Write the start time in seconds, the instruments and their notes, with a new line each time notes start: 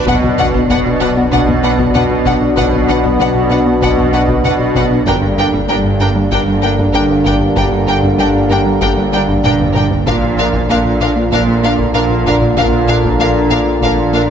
0.05 sub bass B1, double bass section B1, trombone section B2 B3, cello section B2, analog synth bass B2, analog synth pad F#3 B3 D4 D5, synth pluck B3, viola section D4, french horn section D4 F#4, violin section B4 F#5, taiko, sub drop
0.23 analog synth bass B2, synth pluck B4, taiko low-mid
0.38 analog synth bass B2, viola section D4, synth pluck B4, violin section B4 F#5, taiko low-mid
0.54 analog synth bass B2, synth pluck B3, taiko
0.69 double bass section B1, cello section B2, analog synth bass B3, viola section D4, violin section B4 F#5, taiko low-mid
0.86 analog synth bass B2
1.01 analog synth bass B2, synth pluck B3, viola section D4, violin section B4 F#5
1.17 analog synth bass B3, synth pluck F#4
1.32 double bass section B1, cello section B2, analog synth bass B2, synth pluck B3, viola section D4, violin section B4 F#5, taiko
1.47 analog synth bass B3, synth pluck F#4, taiko low-mid
1.63 analog synth bass B3, viola section D4, synth pluck F#4, violin section B4 F#5
1.79 analog synth bass B2, synth pluck B3, taiko
1.94 double bass section B1, cello section B2, analog synth bass B2, viola section D4, synth pluck D4, violin section B4 F#5, taiko low-mid
2.11 analog synth bass B2
2.25 analog synth bass B2, synth pluck B3, viola section D4, violin section B4 F#5, taiko
2.41 analog synth bass B2, synth pluck D4
2.56 double bass section B1, cello section B2, analog synth bass B2, synth pluck B3, viola section D4, violin section B4 F#5, taiko
2.72 analog synth bass B2, synth pluck B4, taiko low-mid
2.88 analog synth bass B2, viola section D4, violin section B4 F#5, synth pluck B4, taiko low-mid
3.04 analog synth bass B2, synth pluck B3, taiko
3.19 double bass section B1, cello section B2, analog synth bass B3, viola section D4, violin section B4 F#5, taiko low-mid
3.35 analog synth bass B2
3.50 analog synth bass B2, synth pluck B3, viola section D4, violin section B4 F#5
3.66 analog synth bass B3, synth pluck F#4
3.82 double bass section B1, cello section B2, analog synth bass B2, synth pluck B3, viola section D4, violin section B4 F#5, taiko
3.97 analog synth bass B3, synth pluck F#4, taiko low-mid
4.12 analog synth bass B3, viola section D4, synth pluck F#4, violin section B4 F#5
4.28 analog synth bass B2, synth pluck B3, taiko
4.44 double bass section B1, cello section B2, analog synth bass B2, synth pluck D4, viola section D4, violin section B4 F#5, taiko low-mid
4.59 analog synth bass B2
4.75 analog synth bass B2, synth pluck B3, viola section D4, violin section B4 F#5, taiko
4.90 analog synth bass B2, synth pluck D4
5.06 double bass section G1, sub bass G1, analog synth bass G2, cello section G2, trombone section D3 A#3, synth pluck G3, analog synth pad G3 A#3 D4 D5, french horn section D4 G4, viola section D4, violin section A#4 G5, taiko
5.21 analog synth bass G2, synth pluck G4
5.37 analog synth bass G2, viola section D4, synth pluck G4, violin section A#4 G5
5.52 analog synth bass G2, synth pluck G3, taiko
5.68 double bass section G1, cello section G2, analog synth bass G3, viola section D4, violin section A#4 G5
5.85 analog synth bass G2
6.00 analog synth bass G2, synth pluck G3, viola section D4, violin section A#4 G5
6.16 analog synth bass G3, synth pluck D4
6.31 double bass section G1, cello section G2, analog synth bass G2, synth pluck G3, viola section D4, violin section A#4 G5, taiko
6.47 analog synth bass G3, synth pluck D4
6.62 analog synth bass G3, synth pluck D4, viola section D4, violin section A#4 G5
6.79 analog synth bass G2, synth pluck G3, taiko
6.93 double bass section G1, analog synth bass G2, cello section G2, synth pluck A#3, viola section D4, violin section A#4 G5
7.09 analog synth bass G2
7.25 analog synth bass G2, synth pluck G3, viola section D4, violin section A#4 G5, taiko
7.41 analog synth bass G2, synth pluck A#3
7.56 double bass section G1, analog synth bass G2, cello section G2, synth pluck G3, viola section D4, violin section A#4 G5, taiko
7.72 analog synth bass G2, synth pluck G4
7.87 analog synth bass G2, viola section D4, synth pluck G4, violin section A#4 G5
8.03 analog synth bass G2, synth pluck G3, taiko
8.19 double bass section G1, cello section G2, analog synth bass G3, viola section D4, violin section A#4 G5
8.34 analog synth bass G2
8.49 analog synth bass G2, synth pluck G3, viola section D4, violin section A#4 G5
8.66 analog synth bass G3, synth pluck D4
8.81 double bass section G1, analog synth bass G2, cello section G2, synth pluck G3, viola section D4, violin section A#4 G5, taiko
8.97 analog synth bass G3, synth pluck D4
9.13 analog synth bass G3, synth pluck D4, viola section D4, violin section A#4 G5
9.29 analog synth bass G2, synth pluck G3, taiko
9.43 double bass section G1, cello section G2, analog synth bass G2, synth pluck A#3, viola section D4, violin section A#4 G5, taiko mid
9.60 analog synth bass G2, taiko low-mid
9.74 analog synth bass G2, synth pluck G3, viola section D4, violin section A#4 G5, taiko mid
9.91 analog synth bass G2, synth pluck A#3, taiko low
10.06 double bass section A#1, sub bass A#1, cello section A#2, analog synth bass A#2, trombone section D3 A#3, analog synth pad F3 A#3 D4 D5, synth pluck A#3, french horn section D4 F4, viola section D4, violin section A#4 F5, taiko
10.23 analog synth bass A#2, synth pluck A#4
10.38 analog synth bass A#2, viola section D4, violin section A#4 F5, synth pluck A#4
10.54 analog synth bass A#2, synth pluck A#3, taiko
10.69 double bass section A#1, cello section A#2, analog synth bass A#3, viola section D4, violin section A#4 F5
10.85 analog synth bass A#2
11.01 analog synth bass A#2, synth pluck A#3, viola section D4, violin section A#4 F5
11.16 analog synth bass A#3, synth pluck F4
11.31 double bass section A#1, analog synth bass A#2, cello section A#2, synth pluck A#3, viola section D4, violin section A#4 F5, taiko
11.47 analog synth bass A#3, synth pluck F4
11.63 analog synth bass A#3, viola section D4, synth pluck F4, violin section A#4 F5
11.78 analog synth bass A#2, synth pluck A#3, taiko
11.94 double bass section A#1, analog synth bass A#2, cello section A#2, synth pluck D4, viola section D4, violin section A#4 F5
12.10 analog synth bass A#2
12.26 analog synth bass A#2, synth pluck A#3, viola section D4, violin section A#4 F5, taiko
12.42 analog synth bass A#2, synth pluck D4
12.57 double bass section A#1, cello section A#2, analog synth bass A#2, synth pluck A#3, viola section D4, violin section A#4 F5, taiko
12.73 analog synth bass A#2, synth pluck A#4
12.88 analog synth bass A#2, viola section D4, synth pluck A#4, violin section A#4 F5
13.04 analog synth bass A#2, synth pluck A#3, taiko
13.19 double bass section A#1, cello section A#2, analog synth bass A#3, viola section D4, violin section A#4 F5
13.35 analog synth bass A#2
13.50 analog synth bass A#2, synth pluck A#3, viola section D4, violin section A#4 F5
13.66 analog synth bass A#3, synth pluck F4
13.82 double bass section A#1, analog synth bass A#2, cello section A#2, synth pluck A#3, viola section D4, violin section A#4 F5, taiko
13.97 analog synth bass A#3, synth pluck F4
14.13 analog synth bass A#3, viola section D4, synth pluck F4, violin section A#4 F5